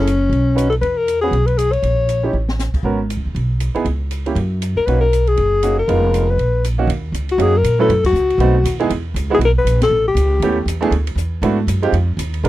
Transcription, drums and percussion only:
0.07 hi-hat pedal medium
0.07 ride medium
0.32 ride soft
0.58 hi-hat pedal medium
0.58 ride medium
0.72 ride soft
0.83 ride soft
1.08 hi-hat pedal soft
1.08 ride medium
1.33 ride soft
1.48 ride soft
1.58 hi-hat pedal medium
1.58 ride medium
1.73 ride soft
1.83 ride medium
2.09 hi-hat pedal soft
2.09 ride medium
2.48 snare medium
2.59 snare medium
2.59 hi-hat pedal medium
2.74 kick medium
2.74 crash medium
3.10 hi-hat pedal soft
3.10 ride medium
3.36 ride soft
3.60 hi-hat pedal medium
3.60 ride medium
3.75 ride soft
3.85 ride soft
4.11 hi-hat pedal soft
4.11 ride medium
4.26 ride soft
4.36 ride soft
4.62 hi-hat pedal medium
4.62 ride medium
4.88 ride soft
5.13 hi-hat pedal medium
5.13 ride medium
5.27 ride soft
5.37 ride soft
5.63 hi-hat pedal medium
5.63 ride medium
5.89 ride medium
6.14 hi-hat pedal medium
6.14 ride medium
6.39 ride soft
6.64 hi-hat pedal medium
6.64 ride medium
6.90 ride medium
7.14 hi-hat pedal medium
7.14 ride medium
7.29 ride soft
7.39 ride medium
7.64 hi-hat pedal medium
7.64 ride medium
7.90 ride medium
8.04 kick medium
8.04 crash medium
8.15 hi-hat pedal soft
8.30 ride soft
8.40 ride medium
8.65 hi-hat pedal medium
8.65 ride medium
8.80 ride soft
8.90 ride medium
9.16 hi-hat pedal medium
9.16 ride medium
9.41 ride medium
9.67 hi-hat pedal medium
9.67 ride medium
9.81 snare medium
9.81 ride medium
10.17 hi-hat pedal medium
10.17 ride medium
10.42 ride medium
10.68 hi-hat pedal medium
10.68 ride medium
10.82 ride soft
10.92 ride medium
11.07 ride medium
11.17 hi-hat pedal medium
11.43 ride medium
11.68 hi-hat pedal medium
11.68 ride medium
11.83 ride soft
11.93 ride medium
12.19 hi-hat pedal medium
12.19 ride medium
12.34 ride soft
12.45 ride medium

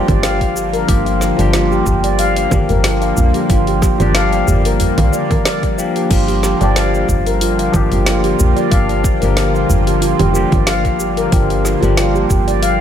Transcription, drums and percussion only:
0.08 kick loud
0.08 open hi-hat soft
0.08 low conga medium
0.08 shaker soft
0.23 snare loud
0.23 open hi-hat medium
0.23 shaker soft
0.41 kick medium
0.41 open hi-hat soft
0.41 shaker soft
0.56 shaker medium
0.74 open hi-hat soft
0.74 shaker soft
0.89 kick loud
0.89 open hi-hat medium
0.89 shaker soft
1.06 open hi-hat soft
1.06 shaker soft
1.21 snare soft
1.21 shaker medium
1.39 open hi-hat soft
1.39 shaker soft
1.53 snare loud
1.53 open hi-hat medium
1.53 shaker soft
1.72 shaker soft
1.86 kick medium
1.86 udu medium
1.86 shaker medium
2.04 open hi-hat soft
2.04 shaker soft
2.19 open hi-hat medium
2.19 shaker soft
2.36 open hi-hat soft
2.36 shaker soft
2.51 kick loud
2.51 low conga medium
2.51 shaker medium
2.69 open hi-hat soft
2.69 udu medium
2.69 shaker soft
2.84 snare loud
2.84 open hi-hat medium
2.84 shaker soft
3.02 open hi-hat soft
3.02 shaker soft
3.17 udu medium
3.17 shaker medium
3.34 open hi-hat soft
3.34 shaker soft
3.50 kick loud
3.50 open hi-hat medium
3.50 shaker soft
3.67 open hi-hat soft
3.67 shaker soft
3.82 kick loud
3.82 snare soft
3.82 shaker medium
4.00 open hi-hat soft
4.00 low conga medium
4.00 shaker soft
4.15 snare loud
4.15 open hi-hat medium
4.15 shaker soft
4.33 open hi-hat soft
4.33 shaker soft
4.48 udu loud
4.48 shaker medium
4.65 open hi-hat soft
4.65 shaker soft
4.80 open hi-hat medium
4.80 udu medium
4.80 shaker soft
4.98 open hi-hat soft
4.98 low conga medium
4.98 shaker soft
5.13 shaker medium
5.31 kick loud
5.31 open hi-hat soft
5.31 low conga medium
5.31 shaker soft
5.45 snare loud
5.45 open hi-hat medium
5.45 shaker soft
5.63 kick medium
5.63 open hi-hat soft
5.63 shaker soft
5.79 shaker medium
5.96 open hi-hat soft
5.96 shaker soft
6.11 kick loud
6.11 open hi-hat medium
6.11 crash medium
6.11 shaker soft
6.28 open hi-hat soft
6.28 shaker soft
6.43 snare soft
6.43 shaker medium
6.61 open hi-hat soft
6.61 shaker soft
6.76 snare loud
6.76 open hi-hat medium
6.76 shaker soft
6.94 shaker soft
7.09 kick medium
7.09 udu medium
7.09 shaker medium
7.27 open hi-hat soft
7.27 shaker soft
7.41 open hi-hat medium
7.41 shaker soft
7.59 open hi-hat soft
7.59 shaker soft
7.74 kick loud
7.74 low conga medium
7.74 shaker medium
7.91 open hi-hat soft
7.91 udu medium
7.91 shaker soft
8.06 snare loud
8.06 open hi-hat medium
8.06 shaker soft
8.24 open hi-hat soft
8.24 shaker soft
8.39 udu medium
8.39 shaker medium
8.57 open hi-hat soft
8.57 shaker soft
8.72 kick loud
8.72 open hi-hat medium
8.72 shaker soft
8.89 open hi-hat soft
8.89 shaker soft
9.04 kick loud
9.04 shaker medium
9.22 open hi-hat soft
9.22 shaker soft
9.37 snare loud
9.37 open hi-hat medium
9.37 shaker soft
9.55 shaker soft
9.69 udu medium
9.69 shaker medium
9.87 open hi-hat soft
9.87 shaker soft
10.02 open hi-hat medium
10.02 shaker soft
10.19 open hi-hat soft
10.19 low conga medium
10.19 shaker soft
10.35 shaker medium
10.52 kick loud
10.52 open hi-hat soft
10.52 low conga medium
10.52 shaker soft
10.67 snare loud
10.67 open hi-hat medium
10.67 shaker soft
10.85 kick medium
10.85 open hi-hat soft
10.85 shaker soft
11.00 shaker medium
11.17 open hi-hat soft
11.17 shaker soft
11.32 kick loud
11.32 open hi-hat medium
11.32 shaker soft
11.50 open hi-hat soft
11.50 shaker soft
11.65 snare soft
11.65 shaker medium
11.83 open hi-hat soft
11.83 shaker soft
11.97 snare medium
11.97 open hi-hat medium
11.97 shaker soft
12.16 shaker soft
12.30 kick medium
12.30 udu medium
12.30 shaker medium
12.48 open hi-hat soft
12.48 shaker soft
12.63 open hi-hat medium
12.63 shaker soft

